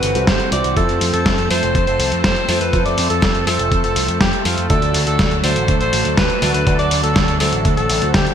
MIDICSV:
0, 0, Header, 1, 6, 480
1, 0, Start_track
1, 0, Tempo, 491803
1, 747, Time_signature, 4, 2, 24, 8
1, 8141, End_track
2, 0, Start_track
2, 0, Title_t, "Alto saxophone"
2, 0, Program_c, 0, 65
2, 0, Note_on_c, 0, 71, 89
2, 217, Note_off_c, 0, 71, 0
2, 268, Note_on_c, 0, 72, 83
2, 475, Note_off_c, 0, 72, 0
2, 508, Note_on_c, 0, 74, 80
2, 714, Note_off_c, 0, 74, 0
2, 748, Note_on_c, 0, 69, 99
2, 1058, Note_off_c, 0, 69, 0
2, 1106, Note_on_c, 0, 69, 90
2, 1417, Note_off_c, 0, 69, 0
2, 1468, Note_on_c, 0, 72, 93
2, 1778, Note_off_c, 0, 72, 0
2, 1826, Note_on_c, 0, 72, 89
2, 2137, Note_off_c, 0, 72, 0
2, 2187, Note_on_c, 0, 72, 94
2, 2497, Note_off_c, 0, 72, 0
2, 2544, Note_on_c, 0, 71, 89
2, 2753, Note_off_c, 0, 71, 0
2, 2785, Note_on_c, 0, 74, 85
2, 2993, Note_off_c, 0, 74, 0
2, 3027, Note_on_c, 0, 69, 93
2, 3337, Note_off_c, 0, 69, 0
2, 3386, Note_on_c, 0, 69, 91
2, 3697, Note_off_c, 0, 69, 0
2, 3746, Note_on_c, 0, 69, 94
2, 4057, Note_off_c, 0, 69, 0
2, 4105, Note_on_c, 0, 67, 86
2, 4313, Note_off_c, 0, 67, 0
2, 4347, Note_on_c, 0, 65, 81
2, 4554, Note_off_c, 0, 65, 0
2, 4586, Note_on_c, 0, 69, 100
2, 4897, Note_off_c, 0, 69, 0
2, 4946, Note_on_c, 0, 69, 97
2, 5257, Note_off_c, 0, 69, 0
2, 5306, Note_on_c, 0, 72, 89
2, 5617, Note_off_c, 0, 72, 0
2, 5667, Note_on_c, 0, 72, 92
2, 5978, Note_off_c, 0, 72, 0
2, 6025, Note_on_c, 0, 71, 90
2, 6337, Note_off_c, 0, 71, 0
2, 6385, Note_on_c, 0, 71, 90
2, 6593, Note_off_c, 0, 71, 0
2, 6626, Note_on_c, 0, 74, 88
2, 6833, Note_off_c, 0, 74, 0
2, 6865, Note_on_c, 0, 69, 95
2, 7177, Note_off_c, 0, 69, 0
2, 7224, Note_on_c, 0, 69, 93
2, 7536, Note_off_c, 0, 69, 0
2, 7584, Note_on_c, 0, 69, 95
2, 7896, Note_off_c, 0, 69, 0
2, 7943, Note_on_c, 0, 67, 89
2, 8141, Note_off_c, 0, 67, 0
2, 8141, End_track
3, 0, Start_track
3, 0, Title_t, "Grand piano"
3, 0, Program_c, 1, 0
3, 0, Note_on_c, 1, 48, 71
3, 0, Note_on_c, 1, 55, 66
3, 0, Note_on_c, 1, 60, 68
3, 0, Note_on_c, 1, 64, 69
3, 0, Note_on_c, 1, 69, 81
3, 123, Note_off_c, 1, 48, 0
3, 123, Note_off_c, 1, 55, 0
3, 123, Note_off_c, 1, 60, 0
3, 123, Note_off_c, 1, 69, 0
3, 124, Note_off_c, 1, 64, 0
3, 147, Note_on_c, 1, 48, 76
3, 148, Note_on_c, 1, 55, 73
3, 148, Note_on_c, 1, 60, 73
3, 148, Note_on_c, 1, 64, 73
3, 148, Note_on_c, 1, 69, 85
3, 478, Note_off_c, 1, 48, 0
3, 478, Note_off_c, 1, 55, 0
3, 478, Note_off_c, 1, 69, 0
3, 479, Note_off_c, 1, 60, 0
3, 479, Note_off_c, 1, 64, 0
3, 508, Note_on_c, 1, 55, 86
3, 508, Note_on_c, 1, 64, 78
3, 509, Note_on_c, 1, 60, 76
3, 509, Note_on_c, 1, 72, 98
3, 719, Note_off_c, 1, 55, 0
3, 719, Note_off_c, 1, 60, 0
3, 719, Note_off_c, 1, 64, 0
3, 719, Note_off_c, 1, 72, 0
3, 748, Note_on_c, 1, 65, 78
3, 749, Note_on_c, 1, 57, 85
3, 749, Note_on_c, 1, 60, 74
3, 749, Note_on_c, 1, 72, 91
3, 1439, Note_off_c, 1, 57, 0
3, 1439, Note_off_c, 1, 60, 0
3, 1439, Note_off_c, 1, 65, 0
3, 1439, Note_off_c, 1, 72, 0
3, 1468, Note_on_c, 1, 57, 73
3, 1468, Note_on_c, 1, 60, 69
3, 1468, Note_on_c, 1, 65, 67
3, 1469, Note_on_c, 1, 72, 79
3, 1629, Note_off_c, 1, 57, 0
3, 1629, Note_off_c, 1, 60, 0
3, 1629, Note_off_c, 1, 65, 0
3, 1629, Note_off_c, 1, 72, 0
3, 2427, Note_on_c, 1, 65, 85
3, 2427, Note_on_c, 1, 72, 105
3, 2428, Note_on_c, 1, 57, 95
3, 2428, Note_on_c, 1, 60, 87
3, 2589, Note_off_c, 1, 57, 0
3, 2589, Note_off_c, 1, 60, 0
3, 2589, Note_off_c, 1, 65, 0
3, 2589, Note_off_c, 1, 72, 0
3, 2667, Note_on_c, 1, 57, 86
3, 2667, Note_on_c, 1, 60, 84
3, 2667, Note_on_c, 1, 65, 82
3, 2667, Note_on_c, 1, 72, 95
3, 3358, Note_off_c, 1, 57, 0
3, 3358, Note_off_c, 1, 60, 0
3, 3358, Note_off_c, 1, 65, 0
3, 3358, Note_off_c, 1, 72, 0
3, 3387, Note_on_c, 1, 57, 71
3, 3387, Note_on_c, 1, 60, 68
3, 3387, Note_on_c, 1, 65, 65
3, 3388, Note_on_c, 1, 69, 82
3, 4558, Note_off_c, 1, 57, 0
3, 4558, Note_off_c, 1, 60, 0
3, 4558, Note_off_c, 1, 65, 0
3, 4558, Note_off_c, 1, 69, 0
3, 4587, Note_on_c, 1, 66, 77
3, 4588, Note_on_c, 1, 50, 83
3, 4588, Note_on_c, 1, 57, 80
3, 4588, Note_on_c, 1, 62, 77
3, 4588, Note_on_c, 1, 74, 92
3, 5278, Note_off_c, 1, 62, 0
3, 5278, Note_off_c, 1, 66, 0
3, 5278, Note_off_c, 1, 74, 0
3, 5279, Note_off_c, 1, 50, 0
3, 5279, Note_off_c, 1, 57, 0
3, 5308, Note_on_c, 1, 50, 74
3, 5308, Note_on_c, 1, 57, 69
3, 5308, Note_on_c, 1, 62, 68
3, 5308, Note_on_c, 1, 66, 70
3, 5308, Note_on_c, 1, 74, 82
3, 5469, Note_off_c, 1, 50, 0
3, 5469, Note_off_c, 1, 57, 0
3, 5469, Note_off_c, 1, 62, 0
3, 5469, Note_off_c, 1, 66, 0
3, 5469, Note_off_c, 1, 74, 0
3, 6268, Note_on_c, 1, 50, 91
3, 6268, Note_on_c, 1, 57, 89
3, 6268, Note_on_c, 1, 62, 88
3, 6268, Note_on_c, 1, 66, 87
3, 6268, Note_on_c, 1, 74, 104
3, 6429, Note_off_c, 1, 50, 0
3, 6429, Note_off_c, 1, 57, 0
3, 6429, Note_off_c, 1, 62, 0
3, 6429, Note_off_c, 1, 66, 0
3, 6429, Note_off_c, 1, 74, 0
3, 6508, Note_on_c, 1, 50, 86
3, 6508, Note_on_c, 1, 57, 83
3, 6508, Note_on_c, 1, 62, 81
3, 6508, Note_on_c, 1, 66, 81
3, 6508, Note_on_c, 1, 74, 97
3, 7198, Note_off_c, 1, 50, 0
3, 7198, Note_off_c, 1, 57, 0
3, 7199, Note_off_c, 1, 62, 0
3, 7199, Note_off_c, 1, 66, 0
3, 7199, Note_off_c, 1, 74, 0
3, 7228, Note_on_c, 1, 50, 76
3, 7228, Note_on_c, 1, 57, 70
3, 7228, Note_on_c, 1, 62, 70
3, 7228, Note_on_c, 1, 66, 67
3, 7228, Note_on_c, 1, 72, 82
3, 7803, Note_off_c, 1, 50, 0
3, 7803, Note_off_c, 1, 62, 0
3, 7803, Note_off_c, 1, 66, 0
3, 7803, Note_off_c, 1, 72, 0
3, 7804, Note_off_c, 1, 57, 0
3, 7827, Note_on_c, 1, 57, 75
3, 7828, Note_on_c, 1, 50, 79
3, 7828, Note_on_c, 1, 62, 75
3, 7828, Note_on_c, 1, 66, 73
3, 7828, Note_on_c, 1, 72, 92
3, 8141, Note_off_c, 1, 50, 0
3, 8141, Note_off_c, 1, 57, 0
3, 8141, Note_off_c, 1, 62, 0
3, 8141, Note_off_c, 1, 66, 0
3, 8141, Note_off_c, 1, 72, 0
3, 8141, End_track
4, 0, Start_track
4, 0, Title_t, "Analog synth pad"
4, 0, Program_c, 2, 89
4, 0, Note_on_c, 2, 52, 77
4, 0, Note_on_c, 2, 55, 68
4, 0, Note_on_c, 2, 60, 68
4, 0, Note_on_c, 2, 66, 83
4, 707, Note_off_c, 2, 55, 0
4, 708, Note_off_c, 2, 52, 0
4, 727, Note_off_c, 2, 66, 0
4, 747, Note_on_c, 2, 53, 75
4, 747, Note_on_c, 2, 57, 68
4, 747, Note_on_c, 2, 69, 80
4, 4547, Note_off_c, 2, 60, 0
4, 4548, Note_off_c, 2, 69, 0
4, 4549, Note_off_c, 2, 53, 0
4, 4587, Note_on_c, 2, 54, 75
4, 4587, Note_on_c, 2, 62, 68
4, 4587, Note_on_c, 2, 69, 84
4, 8141, Note_off_c, 2, 54, 0
4, 8141, Note_off_c, 2, 57, 0
4, 8141, Note_off_c, 2, 62, 0
4, 8141, Note_off_c, 2, 69, 0
4, 8141, End_track
5, 0, Start_track
5, 0, Title_t, "Picked electric bass"
5, 0, Program_c, 3, 34
5, 28, Note_on_c, 3, 31, 87
5, 127, Note_off_c, 3, 31, 0
5, 148, Note_on_c, 3, 36, 76
5, 248, Note_off_c, 3, 36, 0
5, 268, Note_on_c, 3, 31, 92
5, 367, Note_off_c, 3, 31, 0
5, 508, Note_on_c, 3, 36, 90
5, 608, Note_off_c, 3, 36, 0
5, 629, Note_on_c, 3, 36, 79
5, 728, Note_off_c, 3, 36, 0
5, 748, Note_on_c, 3, 41, 98
5, 848, Note_off_c, 3, 41, 0
5, 869, Note_on_c, 3, 41, 72
5, 968, Note_off_c, 3, 41, 0
5, 989, Note_on_c, 3, 41, 88
5, 1088, Note_off_c, 3, 41, 0
5, 1108, Note_on_c, 3, 41, 77
5, 1208, Note_off_c, 3, 41, 0
5, 1349, Note_on_c, 3, 41, 74
5, 1448, Note_off_c, 3, 41, 0
5, 1467, Note_on_c, 3, 41, 85
5, 1567, Note_off_c, 3, 41, 0
5, 1587, Note_on_c, 3, 29, 75
5, 1687, Note_off_c, 3, 29, 0
5, 1708, Note_on_c, 3, 41, 96
5, 1808, Note_off_c, 3, 41, 0
5, 1827, Note_on_c, 3, 29, 73
5, 1927, Note_off_c, 3, 29, 0
5, 1946, Note_on_c, 3, 36, 90
5, 2047, Note_off_c, 3, 36, 0
5, 2067, Note_on_c, 3, 41, 78
5, 2167, Note_off_c, 3, 41, 0
5, 2188, Note_on_c, 3, 41, 96
5, 2288, Note_off_c, 3, 41, 0
5, 2426, Note_on_c, 3, 41, 90
5, 2526, Note_off_c, 3, 41, 0
5, 2546, Note_on_c, 3, 41, 79
5, 2647, Note_off_c, 3, 41, 0
5, 2668, Note_on_c, 3, 41, 101
5, 2768, Note_off_c, 3, 41, 0
5, 2788, Note_on_c, 3, 41, 72
5, 2887, Note_off_c, 3, 41, 0
5, 2907, Note_on_c, 3, 41, 88
5, 3007, Note_off_c, 3, 41, 0
5, 3027, Note_on_c, 3, 41, 76
5, 3127, Note_off_c, 3, 41, 0
5, 3147, Note_on_c, 3, 41, 95
5, 3247, Note_off_c, 3, 41, 0
5, 3266, Note_on_c, 3, 41, 76
5, 3367, Note_off_c, 3, 41, 0
5, 3386, Note_on_c, 3, 41, 86
5, 3487, Note_off_c, 3, 41, 0
5, 3505, Note_on_c, 3, 29, 80
5, 3606, Note_off_c, 3, 29, 0
5, 3627, Note_on_c, 3, 41, 98
5, 3727, Note_off_c, 3, 41, 0
5, 3745, Note_on_c, 3, 29, 72
5, 3846, Note_off_c, 3, 29, 0
5, 3864, Note_on_c, 3, 36, 90
5, 3966, Note_off_c, 3, 36, 0
5, 3985, Note_on_c, 3, 41, 80
5, 4086, Note_off_c, 3, 41, 0
5, 4107, Note_on_c, 3, 41, 93
5, 4207, Note_off_c, 3, 41, 0
5, 4345, Note_on_c, 3, 41, 91
5, 4446, Note_off_c, 3, 41, 0
5, 4467, Note_on_c, 3, 41, 78
5, 4567, Note_off_c, 3, 41, 0
5, 4588, Note_on_c, 3, 38, 98
5, 4688, Note_off_c, 3, 38, 0
5, 4707, Note_on_c, 3, 38, 74
5, 4807, Note_off_c, 3, 38, 0
5, 4827, Note_on_c, 3, 38, 86
5, 4927, Note_off_c, 3, 38, 0
5, 4947, Note_on_c, 3, 38, 76
5, 5047, Note_off_c, 3, 38, 0
5, 5068, Note_on_c, 3, 38, 91
5, 5168, Note_off_c, 3, 38, 0
5, 5186, Note_on_c, 3, 38, 74
5, 5287, Note_off_c, 3, 38, 0
5, 5307, Note_on_c, 3, 38, 89
5, 5407, Note_off_c, 3, 38, 0
5, 5427, Note_on_c, 3, 33, 75
5, 5527, Note_off_c, 3, 33, 0
5, 5549, Note_on_c, 3, 38, 98
5, 5648, Note_off_c, 3, 38, 0
5, 5667, Note_on_c, 3, 33, 72
5, 5767, Note_off_c, 3, 33, 0
5, 5786, Note_on_c, 3, 33, 90
5, 5887, Note_off_c, 3, 33, 0
5, 5906, Note_on_c, 3, 38, 78
5, 6007, Note_off_c, 3, 38, 0
5, 6028, Note_on_c, 3, 38, 93
5, 6128, Note_off_c, 3, 38, 0
5, 6266, Note_on_c, 3, 38, 90
5, 6367, Note_off_c, 3, 38, 0
5, 6386, Note_on_c, 3, 38, 77
5, 6487, Note_off_c, 3, 38, 0
5, 6507, Note_on_c, 3, 38, 98
5, 6607, Note_off_c, 3, 38, 0
5, 6627, Note_on_c, 3, 38, 71
5, 6727, Note_off_c, 3, 38, 0
5, 6747, Note_on_c, 3, 38, 87
5, 6847, Note_off_c, 3, 38, 0
5, 6867, Note_on_c, 3, 38, 78
5, 6967, Note_off_c, 3, 38, 0
5, 6987, Note_on_c, 3, 38, 100
5, 7087, Note_off_c, 3, 38, 0
5, 7106, Note_on_c, 3, 38, 75
5, 7207, Note_off_c, 3, 38, 0
5, 7226, Note_on_c, 3, 38, 93
5, 7327, Note_off_c, 3, 38, 0
5, 7346, Note_on_c, 3, 33, 80
5, 7447, Note_off_c, 3, 33, 0
5, 7468, Note_on_c, 3, 38, 98
5, 7568, Note_off_c, 3, 38, 0
5, 7585, Note_on_c, 3, 33, 69
5, 7686, Note_off_c, 3, 33, 0
5, 7706, Note_on_c, 3, 33, 92
5, 7807, Note_off_c, 3, 33, 0
5, 7826, Note_on_c, 3, 38, 79
5, 7926, Note_off_c, 3, 38, 0
5, 7947, Note_on_c, 3, 38, 98
5, 8047, Note_off_c, 3, 38, 0
5, 8141, End_track
6, 0, Start_track
6, 0, Title_t, "Drums"
6, 27, Note_on_c, 9, 42, 86
6, 124, Note_off_c, 9, 42, 0
6, 147, Note_on_c, 9, 42, 36
6, 245, Note_off_c, 9, 42, 0
6, 267, Note_on_c, 9, 38, 116
6, 267, Note_on_c, 9, 42, 57
6, 268, Note_on_c, 9, 36, 115
6, 364, Note_off_c, 9, 38, 0
6, 364, Note_off_c, 9, 42, 0
6, 365, Note_off_c, 9, 36, 0
6, 387, Note_on_c, 9, 42, 36
6, 485, Note_off_c, 9, 42, 0
6, 507, Note_on_c, 9, 42, 87
6, 605, Note_off_c, 9, 42, 0
6, 627, Note_on_c, 9, 42, 36
6, 725, Note_off_c, 9, 42, 0
6, 747, Note_on_c, 9, 42, 60
6, 748, Note_on_c, 9, 36, 109
6, 845, Note_off_c, 9, 36, 0
6, 845, Note_off_c, 9, 42, 0
6, 868, Note_on_c, 9, 42, 36
6, 966, Note_off_c, 9, 42, 0
6, 988, Note_on_c, 9, 46, 109
6, 1085, Note_off_c, 9, 46, 0
6, 1109, Note_on_c, 9, 42, 36
6, 1206, Note_off_c, 9, 42, 0
6, 1228, Note_on_c, 9, 36, 127
6, 1228, Note_on_c, 9, 38, 117
6, 1228, Note_on_c, 9, 42, 60
6, 1325, Note_off_c, 9, 36, 0
6, 1326, Note_off_c, 9, 38, 0
6, 1326, Note_off_c, 9, 42, 0
6, 1349, Note_on_c, 9, 42, 36
6, 1446, Note_off_c, 9, 42, 0
6, 1469, Note_on_c, 9, 46, 104
6, 1567, Note_off_c, 9, 46, 0
6, 1590, Note_on_c, 9, 42, 35
6, 1687, Note_off_c, 9, 42, 0
6, 1708, Note_on_c, 9, 36, 113
6, 1709, Note_on_c, 9, 42, 62
6, 1805, Note_off_c, 9, 36, 0
6, 1807, Note_off_c, 9, 42, 0
6, 1828, Note_on_c, 9, 42, 37
6, 1926, Note_off_c, 9, 42, 0
6, 1948, Note_on_c, 9, 46, 101
6, 2046, Note_off_c, 9, 46, 0
6, 2067, Note_on_c, 9, 42, 36
6, 2165, Note_off_c, 9, 42, 0
6, 2187, Note_on_c, 9, 36, 121
6, 2187, Note_on_c, 9, 38, 112
6, 2187, Note_on_c, 9, 42, 59
6, 2285, Note_off_c, 9, 36, 0
6, 2285, Note_off_c, 9, 38, 0
6, 2285, Note_off_c, 9, 42, 0
6, 2307, Note_on_c, 9, 42, 36
6, 2404, Note_off_c, 9, 42, 0
6, 2426, Note_on_c, 9, 46, 104
6, 2524, Note_off_c, 9, 46, 0
6, 2547, Note_on_c, 9, 42, 37
6, 2644, Note_off_c, 9, 42, 0
6, 2667, Note_on_c, 9, 36, 111
6, 2667, Note_on_c, 9, 42, 64
6, 2764, Note_off_c, 9, 42, 0
6, 2765, Note_off_c, 9, 36, 0
6, 2787, Note_on_c, 9, 42, 37
6, 2885, Note_off_c, 9, 42, 0
6, 2906, Note_on_c, 9, 46, 107
6, 3003, Note_off_c, 9, 46, 0
6, 3027, Note_on_c, 9, 42, 38
6, 3124, Note_off_c, 9, 42, 0
6, 3146, Note_on_c, 9, 38, 109
6, 3146, Note_on_c, 9, 42, 63
6, 3147, Note_on_c, 9, 36, 123
6, 3243, Note_off_c, 9, 38, 0
6, 3243, Note_off_c, 9, 42, 0
6, 3244, Note_off_c, 9, 36, 0
6, 3267, Note_on_c, 9, 42, 37
6, 3364, Note_off_c, 9, 42, 0
6, 3388, Note_on_c, 9, 46, 111
6, 3485, Note_off_c, 9, 46, 0
6, 3508, Note_on_c, 9, 42, 38
6, 3605, Note_off_c, 9, 42, 0
6, 3627, Note_on_c, 9, 36, 108
6, 3627, Note_on_c, 9, 42, 64
6, 3725, Note_off_c, 9, 36, 0
6, 3725, Note_off_c, 9, 42, 0
6, 3746, Note_on_c, 9, 42, 40
6, 3844, Note_off_c, 9, 42, 0
6, 3866, Note_on_c, 9, 46, 104
6, 3964, Note_off_c, 9, 46, 0
6, 3986, Note_on_c, 9, 42, 39
6, 4083, Note_off_c, 9, 42, 0
6, 4105, Note_on_c, 9, 38, 115
6, 4105, Note_on_c, 9, 42, 62
6, 4107, Note_on_c, 9, 36, 110
6, 4203, Note_off_c, 9, 38, 0
6, 4203, Note_off_c, 9, 42, 0
6, 4205, Note_off_c, 9, 36, 0
6, 4225, Note_on_c, 9, 42, 39
6, 4323, Note_off_c, 9, 42, 0
6, 4346, Note_on_c, 9, 46, 110
6, 4444, Note_off_c, 9, 46, 0
6, 4467, Note_on_c, 9, 42, 37
6, 4564, Note_off_c, 9, 42, 0
6, 4586, Note_on_c, 9, 42, 63
6, 4588, Note_on_c, 9, 36, 108
6, 4684, Note_off_c, 9, 42, 0
6, 4685, Note_off_c, 9, 36, 0
6, 4706, Note_on_c, 9, 42, 40
6, 4804, Note_off_c, 9, 42, 0
6, 4825, Note_on_c, 9, 46, 110
6, 4923, Note_off_c, 9, 46, 0
6, 4947, Note_on_c, 9, 42, 39
6, 5044, Note_off_c, 9, 42, 0
6, 5066, Note_on_c, 9, 38, 111
6, 5066, Note_on_c, 9, 42, 66
6, 5068, Note_on_c, 9, 36, 119
6, 5164, Note_off_c, 9, 38, 0
6, 5164, Note_off_c, 9, 42, 0
6, 5165, Note_off_c, 9, 36, 0
6, 5186, Note_on_c, 9, 42, 38
6, 5284, Note_off_c, 9, 42, 0
6, 5306, Note_on_c, 9, 46, 110
6, 5404, Note_off_c, 9, 46, 0
6, 5426, Note_on_c, 9, 42, 40
6, 5524, Note_off_c, 9, 42, 0
6, 5546, Note_on_c, 9, 42, 65
6, 5548, Note_on_c, 9, 36, 107
6, 5644, Note_off_c, 9, 42, 0
6, 5645, Note_off_c, 9, 36, 0
6, 5667, Note_on_c, 9, 42, 39
6, 5764, Note_off_c, 9, 42, 0
6, 5787, Note_on_c, 9, 46, 111
6, 5884, Note_off_c, 9, 46, 0
6, 5906, Note_on_c, 9, 42, 38
6, 6004, Note_off_c, 9, 42, 0
6, 6026, Note_on_c, 9, 38, 110
6, 6026, Note_on_c, 9, 42, 63
6, 6027, Note_on_c, 9, 36, 108
6, 6124, Note_off_c, 9, 38, 0
6, 6124, Note_off_c, 9, 42, 0
6, 6125, Note_off_c, 9, 36, 0
6, 6146, Note_on_c, 9, 42, 39
6, 6244, Note_off_c, 9, 42, 0
6, 6267, Note_on_c, 9, 46, 110
6, 6364, Note_off_c, 9, 46, 0
6, 6387, Note_on_c, 9, 42, 41
6, 6485, Note_off_c, 9, 42, 0
6, 6507, Note_on_c, 9, 36, 116
6, 6507, Note_on_c, 9, 42, 66
6, 6605, Note_off_c, 9, 36, 0
6, 6605, Note_off_c, 9, 42, 0
6, 6627, Note_on_c, 9, 42, 39
6, 6725, Note_off_c, 9, 42, 0
6, 6746, Note_on_c, 9, 46, 110
6, 6844, Note_off_c, 9, 46, 0
6, 6866, Note_on_c, 9, 42, 39
6, 6964, Note_off_c, 9, 42, 0
6, 6986, Note_on_c, 9, 38, 114
6, 6986, Note_on_c, 9, 42, 66
6, 6987, Note_on_c, 9, 36, 120
6, 7084, Note_off_c, 9, 36, 0
6, 7084, Note_off_c, 9, 38, 0
6, 7084, Note_off_c, 9, 42, 0
6, 7107, Note_on_c, 9, 42, 39
6, 7204, Note_off_c, 9, 42, 0
6, 7225, Note_on_c, 9, 46, 107
6, 7322, Note_off_c, 9, 46, 0
6, 7346, Note_on_c, 9, 42, 41
6, 7443, Note_off_c, 9, 42, 0
6, 7466, Note_on_c, 9, 42, 67
6, 7467, Note_on_c, 9, 36, 108
6, 7564, Note_off_c, 9, 36, 0
6, 7564, Note_off_c, 9, 42, 0
6, 7587, Note_on_c, 9, 42, 39
6, 7684, Note_off_c, 9, 42, 0
6, 7706, Note_on_c, 9, 46, 102
6, 7803, Note_off_c, 9, 46, 0
6, 7826, Note_on_c, 9, 42, 40
6, 7923, Note_off_c, 9, 42, 0
6, 7946, Note_on_c, 9, 38, 105
6, 7946, Note_on_c, 9, 42, 68
6, 7947, Note_on_c, 9, 36, 113
6, 8043, Note_off_c, 9, 38, 0
6, 8043, Note_off_c, 9, 42, 0
6, 8044, Note_off_c, 9, 36, 0
6, 8067, Note_on_c, 9, 42, 40
6, 8141, Note_off_c, 9, 42, 0
6, 8141, End_track
0, 0, End_of_file